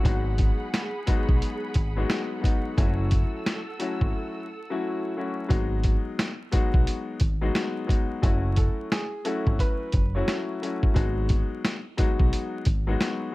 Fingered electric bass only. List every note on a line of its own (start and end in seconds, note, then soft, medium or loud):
0.05 0.50 G#1 loud
1.29 1.39 B1 medium
1.76 2.03 G#1 medium
2.78 3.23 F#1 loud
4.02 4.12 G#1 medium
5.51 5.95 G#1 loud
6.74 6.85 B1 medium
7.21 7.49 G#1 medium
8.23 8.68 F#1 loud
9.47 9.57 G#1 medium
9.94 10.21 F#1 loud
10.96 11.41 G#1 loud
12.20 12.30 B1 medium
12.67 12.94 G#1 medium